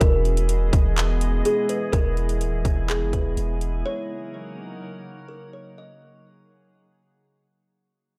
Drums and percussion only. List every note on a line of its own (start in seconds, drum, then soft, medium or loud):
0.01 kick loud
0.01 closed hi-hat medium
0.25 closed hi-hat soft
0.37 closed hi-hat medium
0.49 closed hi-hat medium
0.73 kick loud
0.73 closed hi-hat medium
0.97 clap loud
0.97 closed hi-hat medium
1.21 closed hi-hat medium
1.45 closed hi-hat medium
1.69 closed hi-hat medium
1.93 kick loud
1.93 closed hi-hat medium
2.17 closed hi-hat soft
2.29 closed hi-hat medium
2.41 closed hi-hat medium
2.65 kick medium
2.65 closed hi-hat medium
2.89 clap loud
2.89 closed hi-hat medium
3.13 kick medium
3.13 closed hi-hat medium
3.37 closed hi-hat medium
3.61 closed hi-hat medium